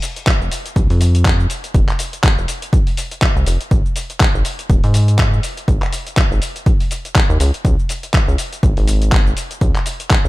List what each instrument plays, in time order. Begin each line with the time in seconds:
0.02 open hi-hat, shaker
0.16 closed hi-hat, shaker
0.27 kick, clap, closed hi-hat, shaker
0.41 analog synth bass F1, shaker
0.52 open hi-hat, shaker
0.66 closed hi-hat, shaker
0.76 analog synth bass C2, kick, closed hi-hat, shaker
0.90 analog synth bass F2, open hi-hat, shaker
1.01 open hi-hat, shaker
1.15 closed hi-hat, shaker
1.25 kick, clap, closed hi-hat, shaker
1.40 shaker
1.50 open hi-hat, shaker
1.64 closed hi-hat, shaker
1.74 analog synth bass F1, kick, closed hi-hat, shaker
1.89 clap, shaker
1.99 open hi-hat, shaker
2.13 closed hi-hat, shaker
2.24 kick, clap, closed hi-hat, shaker
2.38 analog synth bass F1, shaker
2.48 open hi-hat, shaker
2.62 closed hi-hat, shaker
2.73 kick, closed hi-hat, shaker
2.87 open hi-hat, shaker
2.97 open hi-hat, shaker
3.11 closed hi-hat, shaker
3.22 kick, clap, closed hi-hat, shaker
3.36 analog synth bass C2, shaker
3.46 analog synth bass F1, open hi-hat, shaker
3.61 closed hi-hat, shaker
3.71 analog synth bass G#1, kick, closed hi-hat, shaker
3.86 shaker
3.96 open hi-hat, shaker
4.10 closed hi-hat, shaker
4.20 kick, clap, closed hi-hat, shaker
4.34 analog synth bass G#1, shaker
4.45 open hi-hat, shaker
4.59 closed hi-hat, shaker
4.70 analog synth bass D#1, kick, closed hi-hat, shaker
4.84 analog synth bass G#2, open hi-hat, shaker
4.94 open hi-hat, shaker
5.08 closed hi-hat, shaker
5.19 kick, clap, closed hi-hat, shaker
5.33 shaker
5.43 open hi-hat, shaker
5.57 closed hi-hat, shaker
5.68 analog synth bass G#1, kick, closed hi-hat, shaker
5.82 clap, shaker
5.93 open hi-hat, shaker
6.07 closed hi-hat, shaker
6.17 kick, clap, closed hi-hat, shaker
6.31 analog synth bass G#1, shaker
6.42 open hi-hat, shaker
6.56 closed hi-hat, shaker
6.66 kick, closed hi-hat, shaker
6.80 open hi-hat, shaker
6.91 open hi-hat, shaker
7.05 closed hi-hat, shaker
7.15 kick, clap, closed hi-hat, shaker
7.30 analog synth bass D#2, shaker
7.40 analog synth bass C#2, open hi-hat, shaker
7.54 closed hi-hat, shaker
7.65 analog synth bass C#2, kick, closed hi-hat, shaker
7.79 shaker
7.89 open hi-hat, shaker
8.03 closed hi-hat, shaker
8.14 kick, clap, closed hi-hat, shaker
8.28 analog synth bass C#2, shaker
8.38 open hi-hat, shaker
8.53 closed hi-hat, shaker
8.63 analog synth bass G#1, kick, closed hi-hat, shaker
8.77 analog synth bass G#1, open hi-hat, shaker
8.88 open hi-hat, shaker
9.02 closed hi-hat, shaker
9.12 kick, clap, closed hi-hat, shaker
9.27 shaker
9.37 open hi-hat, shaker
9.51 closed hi-hat, shaker
9.61 analog synth bass C#2, kick, closed hi-hat, shaker
9.75 clap, shaker
9.86 open hi-hat, shaker
10.00 closed hi-hat, shaker
10.10 kick, clap, closed hi-hat, shaker
10.25 analog synth bass C#2, shaker